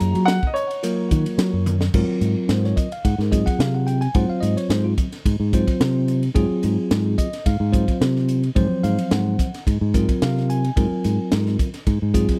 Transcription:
Already playing: F#3 A#3 F4 G#4 A#5
0.00 F#2, hi-hat pedal, ride
0.15 F#3, ride
0.25 F#5, snare, hi-hat pedal, ride
0.43 D#5, kick
0.54 C#5, hi-hat pedal, ride
0.71 ride
0.83 F#3 A#3 F4 A#4, hi-hat pedal, ride
1.11 D#3, kick, hi-hat pedal, ride
1.26 ride
1.38 F#3, snare, hi-hat pedal, ride
1.53 F#2
1.66 hi-hat pedal, high tom
1.81 snare
1.94 G#2 F#3 C4 F4 A#4, kick, crash
2.08 muted fingered electric bass stroke
2.21 G#2, hi-hat pedal, ride
2.49 G#2 C5, snare, ride
2.64 C#5, snare
2.76 D#5, kick, hi-hat pedal, ride
2.92 F5, ride
3.05 G#2 F#5, kick, ride
3.18 G#2 A#4, snare
3.31 F#3 C4 F4 G#4 D#5, kick, hi-hat pedal, ride
3.46 F#5, kick, ride
3.59 C3 F5, snare, ride
3.75 F#5
3.87 G5, hi-hat pedal, ride
4.01 G#5, ride
4.14 G#2 F#3 C4 F4 C5 F#5, kick, ride
4.30 F5, muted fingered electric bass stroke
4.41 G#2 D#5, hi-hat pedal, ride
4.57 C#5, ride
4.69 G#2 C5, snare, ride
4.84 F4
4.98 kick, hi-hat pedal, ride
5.12 snare, ride
5.25 G#2, kick, ride
5.40 G#2
5.53 F#3 C4 F4 C5, kick, hi-hat pedal, ride
5.68 kick, ride
5.80 C3, snare, ride
6.08 hi-hat pedal, ride
6.23 ride
6.34 G#2 F#3 C4 F4 G#4, kick, ride
6.50 muted fingered electric bass stroke
6.63 G#2, hi-hat pedal, ride
6.91 G#2, snare, ride
7.18 D#5, kick, hi-hat pedal, ride
7.33 snare, ride
7.46 G#2 F5, kick, ride
7.60 G#2
7.72 F#3 C4 F4 C5, kick, hi-hat pedal, ride
7.88 kick, ride
8.01 C3, snare, ride
8.16 snare
8.29 hi-hat pedal, ride
8.43 ride
8.55 G#2 F3 F#3 C4 C5, kick, ride
8.71 muted fingered electric bass stroke
8.83 G#2 F5, hi-hat pedal, ride
8.98 ride
9.11 G#2 F#5, snare, ride
9.39 kick, hi-hat pedal, ride
9.54 snare, ride
9.67 G#2, kick, ride
9.81 G#2
9.94 F#3 C4 F4 A#4, kick, hi-hat pedal, ride
10.09 kick, ride
10.22 C3 F5, snare, ride
10.37 snare
10.50 G#5, hi-hat pedal, ride
10.64 ride
10.76 G#2 F#3 C4 F4 A#4, kick, ride
10.91 muted fingered electric bass stroke
11.04 G#2, hi-hat pedal, ride
11.32 G#2, snare, ride
11.46 snare
11.59 kick, hi-hat pedal, ride
11.74 snare, ride
11.87 G#2, kick, ride
12.02 G#2
12.14 F#3 C4 F4 G#4, kick, hi-hat pedal, ride
12.29 kick, ride

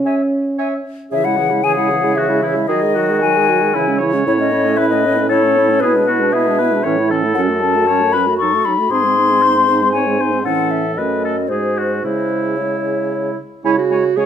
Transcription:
Already playing: C#4
0.05 C#5 E5 G#5
0.58 C#5 E5 G#5
1.11 C#3 E3 G#4 E5
1.24 G#3 E4 F#5
1.37 E3 G#4
1.50 G#3 E4
1.64 E3 G#4 G#5
1.76 G#3 E4 F#5
1.90 E3 G#4
2.04 G#3 E4
2.15 E3 F#4 G#4 E5
2.29 G#3 E4
2.42 E3 E4 G#4
2.55 G#3 E4
2.68 D#3 F#3 F#4 G#4 D#5
2.82 G#3 G#4
2.95 F#3 F#4
3.10 G#3 G#4
3.21 F#3 F#4 G#5
3.37 G#3 G#4
3.49 F#3 F#4
3.62 G#3 G#4
3.74 C#3 E3 E4
3.88 G#3 C#4
3.98 E3 E4 C#5
4.14 G#3 C#4
4.26 A2 C#4 E4 C#5
4.39 A3 C#4 D#5
4.51 C#4 E4
4.65 A3 C#4
4.76 C#4 E4 B4 E5
4.89 A3 C#4 D#5
5.05 C#4 E4
5.18 A3 C#4
5.29 C#4 E4 A4 C#5
5.43 A3 C#4
5.57 C#4 E4
5.70 A3 C#4
5.80 B2 B3 G#4 B4
5.84 E4
5.95 G#3 D4
6.07 B3 E4 F#4
6.20 G#3 D4
6.32 B3 E4 G#4 E5
6.47 G#3 D4
6.58 B3 E4 B4
6.72 G#3 D4
6.84 A2 E3 C#4 C#5
6.98 A3 E4
7.11 E3 C#4 A4
7.24 A3 E4
7.35 F#2 F#3 C#4 F#5
7.49 A3 F#4
7.61 F#3 C#4 A5
7.76 A3 F#4
7.87 F#3 C#4 C#5
8.01 A3 F#4
8.12 F#3 C#4 B4 B5
8.27 A3 F#4
8.38 F#3 A4 C#6
8.42 D#4
8.53 A3 F#4
8.65 F#3 D#4 B5
8.79 A3 F#4
8.90 G#2 C4 D#4 G#4 C6
9.04 G#3 C4
9.18 C4 D#4
9.30 G#3 C4
9.42 C4 D#4 C5
9.55 G#3 C4
9.69 C4 D#4
9.82 G#3 C4
9.93 C4 D#4 C#5 G#5
10.06 G#3 C4
10.19 C4 D#4 C5
10.32 G#3 C4
10.44 A2 E3 C#4 A4 F#5
10.71 E5
10.96 F#2 A3 C#4 B4 D#5
11.25 A4
11.48 G#2 G#3 F#4 G#4 C5
11.78 F#4
12.03 C#3 G#3 E4 C5
12.57 G#3 E4 C#5
13.64 C#3 G#3 E4 C#5 G#5
13.78 F#4
13.90 G#3 C#5 G#5
14.17 C#3 G#3 G#4 C#5 G#5

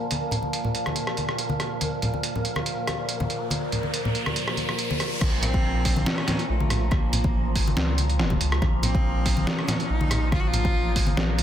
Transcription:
Already playing: A#2 F3 A#3 A#4
0.11 closed hi-hat, high conga
0.31 closed hi-hat, low conga
0.43 high conga
0.53 closed hi-hat
0.65 low conga
0.75 closed hi-hat
0.86 cross-stick, high conga
0.96 closed hi-hat
1.07 cross-stick
1.17 closed hi-hat, high conga
1.29 cross-stick
1.38 closed hi-hat
1.49 high conga
1.60 cross-stick, closed hi-hat
1.81 closed hi-hat, riser, high conga
2.02 closed hi-hat, low conga
2.14 high conga
2.23 closed hi-hat
2.36 low conga
2.45 closed hi-hat
2.56 cross-stick, high conga
2.66 closed hi-hat
2.87 cross-stick, closed hi-hat, high conga
3.09 closed hi-hat
3.20 high conga, low conga
3.30 closed hi-hat
3.50 closed hi-hat, high conga
3.72 closed hi-hat, low conga
3.83 high conga
3.94 closed hi-hat
4.05 low conga
4.15 closed hi-hat
4.26 cross-stick, high conga
4.36 closed hi-hat
4.48 cross-stick
4.57 closed hi-hat, high conga
4.69 cross-stick
4.79 closed hi-hat
4.91 high conga
5.00 cross-stick, closed hi-hat
5.21 A#1 A#2 F3 A#5, kick, cross-stick, crash, high conga
5.42 C4, closed hi-hat, low conga
5.53 kick, high conga
5.85 kick, open hi-hat
5.96 high conga
6.06 C#4, snare
6.18 cross-stick
6.28 snare, closed hi-hat, high conga, low conga
6.39 closed hi-hat
6.49 A#1 A3
6.60 high conga
6.70 cross-stick, closed hi-hat, low conga
6.91 A#3, kick, cross-stick, high conga
7.13 closed hi-hat, low conga
7.24 kick, high conga
7.38 A1
7.56 kick, open hi-hat
7.63 G#1
7.67 high conga
7.77 C#2, snare
7.98 closed hi-hat, high conga
8.09 closed hi-hat
8.19 snare
8.30 kick, high conga
8.41 C#2, closed hi-hat
8.52 cross-stick
8.62 A#1, kick, cross-stick, high conga
8.83 C4, closed hi-hat, low conga
8.95 kick, high conga
9.26 kick, open hi-hat
9.37 high conga
9.47 C#4, snare
9.59 cross-stick
9.68 snare, closed hi-hat, high conga, low conga
9.80 closed hi-hat
9.89 A#1 D#4
10.01 high conga
10.11 cross-stick, closed hi-hat, low conga
10.32 F4, kick, cross-stick, high conga
10.40 F#4
10.47 F4
10.53 closed hi-hat, low conga
10.65 kick, high conga
10.79 A1
10.96 kick, open hi-hat
11.04 G#1, high conga
11.17 A#1, snare
11.38 closed hi-hat, high conga

